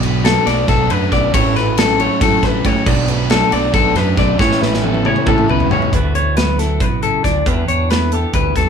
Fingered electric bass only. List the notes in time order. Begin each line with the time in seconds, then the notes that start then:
Already playing: B1
0.47 B1
0.68 B1
0.90 F#2
1.12 B1
1.34 A1
2.21 A2
2.43 A1
2.65 A1
2.87 B1
3.53 B1
3.74 B1
3.95 F#2
4.17 B1
4.39 A1
5.27 A2
5.50 C#2
5.71 A1
5.93 D2
6.80 A1
7.24 D2
7.46 E2
7.68 E2
8.34 D2
8.56 E2